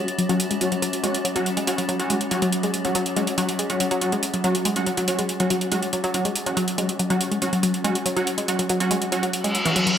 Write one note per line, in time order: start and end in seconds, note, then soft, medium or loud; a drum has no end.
0.00 9.98 F#3 medium
0.00 9.98 C#4 medium
0.08 closed hi-hat medium
0.18 0.22 F#3 medium
0.18 closed hi-hat medium
0.29 0.47 F#3 medium
0.29 0.35 F#3 loud
0.29 0.47 C#4 medium
0.29 0.47 F#4 loud
0.29 closed hi-hat medium
0.40 closed hi-hat medium
0.51 0.54 G#3 medium
0.51 closed hi-hat medium
0.61 0.72 F#3 medium
0.61 0.72 C#4 medium
0.61 0.72 F#4 loud
0.61 closed hi-hat medium
0.72 0.76 F#3 medium
0.72 closed hi-hat medium
0.82 0.88 F#3 loud
0.82 closed hi-hat medium
0.93 closed hi-hat medium
1.03 1.15 F#3 medium
1.03 1.08 G#3 medium
1.03 1.15 C#4 medium
1.03 1.15 F#4 medium
1.03 closed hi-hat medium
1.15 closed hi-hat medium
1.25 1.29 F#3 medium
1.25 closed hi-hat medium
1.36 1.41 F#3 loud
1.36 1.46 F#3 medium
1.36 1.46 C#4 medium
1.36 1.46 F#4 loud
1.36 closed hi-hat soft
1.46 closed hi-hat medium
1.57 1.61 G#3 medium
1.57 closed hi-hat medium
1.67 1.79 F#3 medium
1.67 1.78 C#4 medium
1.67 1.78 F#4 medium
1.67 closed hi-hat medium
1.78 1.82 F#3 medium
1.78 closed hi-hat medium
1.89 1.95 F#3 loud
1.89 closed hi-hat medium
1.99 2.17 F#3 medium
1.99 2.17 C#4 medium
1.99 2.17 F#4 loud
1.99 closed hi-hat soft
2.10 2.14 G#3 medium
2.10 closed hi-hat medium
2.21 closed hi-hat soft
2.31 2.42 F#3 medium
2.31 2.35 F#3 medium
2.31 2.42 C#4 medium
2.31 2.42 F#4 loud
2.31 closed hi-hat medium
2.42 2.48 F#3 loud
2.42 closed hi-hat soft
2.52 closed hi-hat medium
2.63 2.67 G#3 medium
2.63 closed hi-hat soft
2.74 closed hi-hat medium
2.85 2.95 F#3 medium
2.85 2.89 F#3 medium
2.85 2.95 C#4 medium
2.85 2.95 F#4 medium
2.85 closed hi-hat soft
2.95 3.01 F#3 loud
2.95 closed hi-hat medium
3.06 closed hi-hat soft
3.16 3.27 F#3 medium
3.16 3.20 G#3 medium
3.16 3.28 C#4 medium
3.16 3.27 F#4 medium
3.16 closed hi-hat medium
3.27 closed hi-hat medium
3.38 3.49 F#3 medium
3.38 3.44 F#3 loud
3.38 3.49 C#4 medium
3.38 3.49 F#4 medium
3.38 closed hi-hat medium
3.49 closed hi-hat medium
3.59 3.63 G#3 medium
3.59 closed hi-hat medium
3.70 3.87 F#3 medium
3.70 3.87 C#4 medium
3.70 3.87 F#4 loud
3.70 closed hi-hat soft
3.80 3.84 F#3 medium
3.80 closed hi-hat medium
3.91 3.97 F#3 loud
3.91 closed hi-hat medium
4.01 4.13 F#3 medium
4.01 4.13 C#4 medium
4.01 4.13 F#4 loud
4.01 closed hi-hat medium
4.12 4.16 G#3 medium
4.12 closed hi-hat soft
4.23 closed hi-hat medium
4.34 4.37 F#3 medium
4.34 closed hi-hat soft
4.44 4.55 F#3 medium
4.44 4.50 F#3 loud
4.44 4.55 C#4 medium
4.44 4.55 F#4 medium
4.44 closed hi-hat medium
4.55 closed hi-hat soft
4.65 4.69 G#3 medium
4.65 closed hi-hat medium
4.76 4.87 F#3 medium
4.76 4.87 C#4 medium
4.76 4.87 F#4 loud
4.76 closed hi-hat soft
4.86 4.91 F#3 medium
4.86 closed hi-hat medium
4.97 5.03 F#3 loud
4.97 closed hi-hat soft
5.08 5.19 F#3 medium
5.08 5.19 C#4 medium
5.08 5.19 F#4 medium
5.08 closed hi-hat medium
5.19 5.22 G#3 medium
5.19 closed hi-hat soft
5.29 closed hi-hat medium
5.40 5.57 F#3 medium
5.40 5.44 F#3 medium
5.40 5.57 C#4 medium
5.40 5.57 F#4 loud
5.40 closed hi-hat soft
5.50 5.56 F#3 loud
5.50 closed hi-hat medium
5.61 closed hi-hat soft
5.72 5.83 F#3 loud
5.72 5.76 G#3 medium
5.72 5.83 C#4 medium
5.72 5.83 F#4 loud
5.72 closed hi-hat medium
5.83 closed hi-hat soft
5.93 5.97 F#3 medium
5.93 closed hi-hat medium
6.04 6.10 F#3 loud
6.04 closed hi-hat soft
6.14 6.25 F#3 medium
6.14 6.25 C#4 medium
6.14 6.25 F#4 medium
6.14 closed hi-hat medium
6.25 6.29 G#3 medium
6.25 closed hi-hat soft
6.36 closed hi-hat medium
6.46 6.57 F#3 medium
6.46 6.50 F#3 medium
6.46 6.57 C#4 medium
6.46 6.57 F#4 loud
6.46 closed hi-hat soft
6.57 6.63 F#3 loud
6.57 closed hi-hat medium
6.68 closed hi-hat medium
6.78 6.89 F#3 medium
6.78 6.82 G#3 medium
6.78 6.89 C#4 medium
6.78 6.89 F#4 medium
6.78 closed hi-hat medium
6.89 closed hi-hat medium
6.99 7.03 F#3 medium
6.99 closed hi-hat medium
7.10 7.16 F#3 loud
7.10 7.28 F#3 medium
7.10 7.28 C#4 medium
7.10 7.28 F#4 loud
7.10 closed hi-hat medium
7.21 closed hi-hat medium
7.31 7.35 G#3 medium
7.31 closed hi-hat soft
7.42 7.53 F#3 medium
7.42 7.53 C#4 medium
7.42 7.53 F#4 loud
7.42 closed hi-hat medium
7.53 7.57 F#3 medium
7.53 closed hi-hat soft
7.63 7.69 F#3 medium
7.63 closed hi-hat medium
7.74 closed hi-hat soft
7.84 7.96 F#3 medium
7.84 7.88 G#3 medium
7.84 7.96 C#4 medium
7.84 7.96 F#4 medium
7.84 closed hi-hat medium
7.95 closed hi-hat medium
8.06 8.10 F#3 medium
8.06 closed hi-hat medium
8.16 8.27 F#3 medium
8.16 8.22 F#3 loud
8.16 8.27 C#4 medium
8.16 8.27 F#4 loud
8.16 closed hi-hat soft
8.27 closed hi-hat medium
8.38 8.42 G#3 medium
8.38 closed hi-hat medium
8.48 8.59 F#3 medium
8.48 8.59 C#4 medium
8.48 8.59 F#4 medium
8.48 closed hi-hat medium
8.59 8.63 F#3 medium
8.59 closed hi-hat medium
8.69 8.76 F#3 loud
8.69 closed hi-hat medium
8.80 8.98 F#3 medium
8.80 8.98 C#4 medium
8.80 8.98 F#4 loud
8.80 closed hi-hat medium
8.91 8.95 G#3 medium
8.91 closed hi-hat medium
9.02 closed hi-hat medium
9.12 9.16 F#3 medium
9.12 9.23 F#3 medium
9.12 9.23 C#4 medium
9.12 9.23 F#4 loud
9.12 closed hi-hat medium
9.23 9.29 F#3 loud
9.23 closed hi-hat medium
9.33 closed hi-hat medium
9.33 reverse cymbal medium
9.44 9.48 G#3 medium
9.44 closed hi-hat medium
9.55 closed hi-hat medium
9.65 9.69 E3 loud
9.65 9.76 F#3 medium
9.65 9.76 C#4 medium
9.65 9.76 F#4 medium
9.65 closed hi-hat soft
9.76 9.80 F#3 medium
9.76 closed hi-hat medium
9.87 9.90 F#3 medium
9.87 closed hi-hat soft